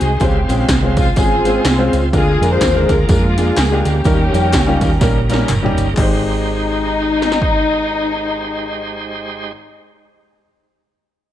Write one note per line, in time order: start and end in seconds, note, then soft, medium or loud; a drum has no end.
0.00 0.18 C2 loud
0.00 0.19 G#3 medium
0.00 0.19 C4 medium
0.00 0.18 D#4 medium
0.00 0.19 D#4 medium
0.00 0.19 F#4 medium
0.00 0.21 G#4 loud
0.00 0.19 C5 medium
0.00 closed hi-hat medium
0.00 tambourine medium
0.20 0.45 C#2 loud
0.20 0.93 C#3 medium
0.20 0.37 G#3 medium
0.20 2.09 G#3 medium
0.20 2.09 C4 medium
0.20 0.37 C4 medium
0.20 1.14 C4 medium
0.20 0.37 C#4 medium
0.20 2.09 F4 medium
0.20 0.37 F4 medium
0.20 0.70 G4 medium
0.20 2.09 C5 medium
0.20 0.38 C5 medium
0.20 kick loud
0.20 closed hi-hat medium
0.20 tambourine medium
0.48 0.66 A#1 loud
0.48 0.66 G#3 medium
0.48 0.66 C4 medium
0.48 0.66 C#4 medium
0.48 0.66 F4 medium
0.48 0.66 G#4 medium
0.48 closed hi-hat medium
0.48 tambourine medium
0.69 1.10 C2 loud
0.69 kick loud
0.69 snare loud
0.69 clap loud
0.69 closed hi-hat medium
0.69 tambourine loud
0.82 1.04 G#3 medium
0.82 1.04 C4 medium
0.82 1.04 C#4 medium
0.82 1.04 F4 medium
0.82 1.05 C5 medium
0.97 1.16 F4 loud
0.97 kick loud
0.97 closed hi-hat medium
0.97 tambourine medium
1.16 1.58 G#1 medium
1.16 1.33 G#3 medium
1.16 1.33 C4 medium
1.16 2.10 C4 loud
1.16 1.33 C#4 medium
1.16 1.33 F4 medium
1.16 2.10 F4 medium
1.16 1.94 G#4 loud
1.16 1.34 G#4 medium
1.16 kick loud
1.16 closed hi-hat medium
1.16 tambourine loud
1.45 1.62 G#3 medium
1.45 1.62 C4 medium
1.45 1.62 C#4 medium
1.45 1.62 F4 medium
1.45 1.63 C5 medium
1.45 snare soft
1.45 closed hi-hat medium
1.45 tambourine medium
1.65 1.89 C2 medium
1.65 snare loud
1.65 clap loud
1.65 closed hi-hat medium
1.65 tambourine medium
1.78 2.00 G#3 loud
1.78 2.00 C4 loud
1.78 2.00 C#4 medium
1.78 2.01 F4 medium
1.78 2.01 C5 loud
1.93 2.10 C#2 loud
1.93 closed hi-hat medium
1.93 tambourine soft
2.13 2.37 D2 medium
2.13 2.86 D3 medium
2.13 2.29 G#3 medium
2.13 4.02 G#3 medium
2.13 2.29 A#3 medium
2.13 4.02 A#3 medium
2.13 2.29 D4 medium
2.13 4.02 D4 medium
2.13 2.50 F4 loud
2.13 4.02 F4 medium
2.13 2.30 F4 medium
2.13 2.49 G#4 loud
2.13 4.02 A#4 medium
2.13 2.30 A#4 medium
2.13 kick loud
2.13 closed hi-hat medium
2.13 tambourine medium
2.41 2.58 F2 loud
2.41 2.58 G#3 medium
2.41 2.58 A#3 medium
2.41 2.58 D4 medium
2.41 2.59 F4 medium
2.41 2.59 A#4 medium
2.41 closed hi-hat medium
2.41 tambourine medium
2.51 3.08 F4 medium
2.51 3.43 G#4 medium
2.51 2.89 C5 loud
2.61 2.85 D#2 loud
2.61 kick loud
2.61 snare loud
2.61 clap loud
2.61 closed hi-hat medium
2.61 tambourine loud
2.75 2.96 G#3 medium
2.75 2.96 A#3 medium
2.75 2.97 D4 medium
2.75 2.97 F4 medium
2.75 2.97 A#4 loud
2.89 3.06 D2 medium
2.89 3.09 A#4 loud
2.89 kick loud
2.89 snare soft
2.89 closed hi-hat medium
2.89 tambourine medium
3.09 3.50 F2 medium
3.09 3.25 G#3 medium
3.09 4.01 G#3 medium
3.09 3.85 A#3 medium
3.09 3.25 A#3 medium
3.09 3.25 D4 medium
3.09 3.54 F4 loud
3.09 3.26 F4 medium
3.09 3.26 A#4 medium
3.09 kick loud
3.09 closed hi-hat loud
3.09 tambourine loud
3.37 3.54 G#3 medium
3.37 3.54 A#3 medium
3.37 3.54 D4 medium
3.37 3.55 F4 medium
3.37 3.55 G#4 medium
3.37 snare soft
3.37 closed hi-hat medium
3.37 tambourine medium
3.57 3.81 C#2 loud
3.57 3.86 G#4 loud
3.57 snare loud
3.57 clap loud
3.57 closed hi-hat medium
3.57 tambourine loud
3.71 3.92 G#3 medium
3.71 3.92 A#3 medium
3.71 3.93 D4 medium
3.71 3.93 F4 medium
3.71 3.93 G4 medium
3.85 4.02 D2 loud
3.85 5.46 A#3 medium
3.85 5.46 C#4 medium
3.85 5.50 G4 loud
3.85 closed hi-hat medium
3.85 tambourine soft
4.04 4.29 D#2 loud
4.04 4.78 D#3 medium
4.04 4.21 G3 medium
4.04 5.94 G3 medium
4.04 4.21 A#3 medium
4.04 5.94 A#3 medium
4.04 4.22 C#4 medium
4.04 5.94 C#4 medium
4.04 5.94 D#4 medium
4.04 4.22 D#4 medium
4.04 5.94 A#4 medium
4.04 4.22 A#4 medium
4.04 kick loud
4.04 closed hi-hat medium
4.04 tambourine medium
4.33 4.55 F2 medium
4.33 4.50 G3 medium
4.33 4.50 A#3 medium
4.33 4.51 C#4 medium
4.33 4.51 D#4 medium
4.33 4.51 A#4 medium
4.33 closed hi-hat medium
4.33 tambourine medium
4.53 4.77 C#2 loud
4.53 kick medium
4.53 snare loud
4.53 clap loud
4.53 closed hi-hat medium
4.53 tambourine loud
4.67 4.88 G3 medium
4.67 4.88 A#3 medium
4.67 4.89 C#4 medium
4.67 4.89 D#4 medium
4.67 4.89 F4 loud
4.81 4.98 D#2 medium
4.81 kick loud
4.81 closed hi-hat medium
4.81 tambourine medium
5.01 5.42 A#1 loud
5.01 5.17 G3 medium
5.01 5.17 A#3 medium
5.01 5.18 C#4 medium
5.01 5.18 D#4 medium
5.01 5.18 A#4 loud
5.01 kick loud
5.01 snare medium
5.01 closed hi-hat medium
5.01 tambourine medium
5.29 5.46 G3 medium
5.29 5.47 A#3 medium
5.29 5.47 C#4 medium
5.29 5.47 D#4 medium
5.29 5.47 A#4 loud
5.29 closed hi-hat medium
5.29 tambourine medium
5.33 snare medium
5.49 5.74 F#1 medium
5.49 clap loud
5.49 closed hi-hat medium
5.49 mid tom medium
5.49 tambourine loud
5.62 5.84 G3 loud
5.62 5.85 A#3 medium
5.62 5.85 C#4 medium
5.62 5.85 D#4 medium
5.62 5.85 G4 loud
5.62 floor tom loud
5.77 5.95 G1 loud
5.77 closed hi-hat medium
5.77 tambourine medium
5.94 9.53 G#1 medium
5.94 9.49 G#3 medium
5.94 9.52 G#3 medium
5.94 9.52 D#4 medium
5.94 9.52 D#4 loud
5.94 9.52 D#4 medium
5.94 9.52 G4 medium
5.94 9.52 C5 medium
5.94 kick loud
5.94 clap medium
5.94 crash medium
5.99 9.54 G4 medium
5.99 9.57 C5 medium
7.22 snare medium
7.32 snare medium
7.42 kick medium